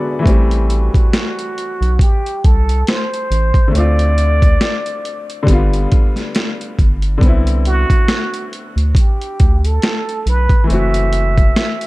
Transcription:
Already playing: upright piano D3 G#3 B3 F#4 D5 E5 G#5 A5 B5
0.19 upright piano E3 A3
0.26 analog synth bass A1, upright piano G3 C4, kick, closed hi-hat
0.51 closed hi-hat
0.70 muted trumpet F#4, closed hi-hat
0.94 kick, closed hi-hat
1.13 snare, closed hi-hat
1.39 closed hi-hat
1.58 closed hi-hat
1.81 analog synth bass B1, closed hi-hat
1.99 muted trumpet G4, kick, closed hi-hat
2.26 closed hi-hat
2.44 analog synth bass C2, muted trumpet A4, kick, closed hi-hat
2.69 closed hi-hat
2.87 muted trumpet C5, snare, closed hi-hat
3.14 closed hi-hat
3.31 analog synth bass A1, closed hi-hat
3.54 kick, closed hi-hat
3.68 upright piano D3 A3
3.75 analog synth bass D2, upright piano C4 F4, muted trumpet D5, closed hi-hat
3.99 closed hi-hat
4.18 closed hi-hat
4.42 kick, closed hi-hat
4.61 snare, closed hi-hat
4.86 closed hi-hat
5.05 closed hi-hat
5.30 closed hi-hat
5.43 upright piano D3 G3
5.47 analog synth bass G1, upright piano B3, kick, closed hi-hat
5.53 upright piano F4
5.73 closed hi-hat
5.92 kick, closed hi-hat
6.16 snare, closed hi-hat
6.35 snare, closed hi-hat
6.61 closed hi-hat
6.79 analog synth bass G1, kick, closed hi-hat
7.02 closed hi-hat
7.18 upright piano D3 B3, kick
7.22 analog synth bass C2, upright piano C4, closed hi-hat
7.28 upright piano E4
7.47 closed hi-hat
7.65 muted trumpet F#4, closed hi-hat
7.90 kick, closed hi-hat
8.08 snare, closed hi-hat
8.34 closed hi-hat
8.53 closed hi-hat
8.76 analog synth bass D2, closed hi-hat
8.95 muted trumpet G4, kick, closed hi-hat
9.21 closed hi-hat
9.40 analog synth bass D2, kick, closed hi-hat
9.65 muted trumpet A4, closed hi-hat
9.82 snare, closed hi-hat
10.09 closed hi-hat
10.26 analog synth bass B1, muted trumpet B4, closed hi-hat
10.49 kick, closed hi-hat
10.64 upright piano E3 A3
10.70 analog synth bass F#1, upright piano C4, muted trumpet E5, closed hi-hat
10.74 upright piano F#4
10.94 closed hi-hat
11.13 closed hi-hat
11.38 kick, closed hi-hat
11.56 snare, closed hi-hat
11.81 closed hi-hat

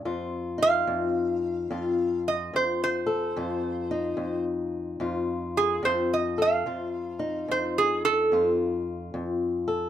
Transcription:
0.05 steel-string acoustic guitar F2 F4
0.58 steel-string acoustic guitar D#4
0.62 resonator guitar played with a steel bar F5
0.87 steel-string acoustic guitar F2
1.71 steel-string acoustic guitar F2 F4
2.28 resonator guitar played with a steel bar D#5
2.54 steel-string acoustic guitar F2, resonator guitar played with a steel bar C5
2.84 resonator guitar played with a steel bar C5
3.06 steel-string acoustic guitar A4
3.37 steel-string acoustic guitar F2 F4
3.91 steel-string acoustic guitar D#4
4.17 steel-string acoustic guitar F2
5.00 steel-string acoustic guitar F2 F4
5.57 resonator guitar played with a steel bar G#4
5.83 steel-string acoustic guitar F2, resonator guitar played with a steel bar C5
6.14 resonator guitar played with a steel bar D#5
6.38 steel-string acoustic guitar A4, resonator guitar played with a steel bar F5
6.66 steel-string acoustic guitar F2 F4
7.19 steel-string acoustic guitar D#4
7.48 steel-string acoustic guitar F2, resonator guitar played with a steel bar C5
7.78 resonator guitar played with a steel bar G#4
8.05 resonator guitar played with a steel bar A4
8.32 steel-string acoustic guitar F2 F4
9.14 steel-string acoustic guitar F2
9.68 steel-string acoustic guitar A4

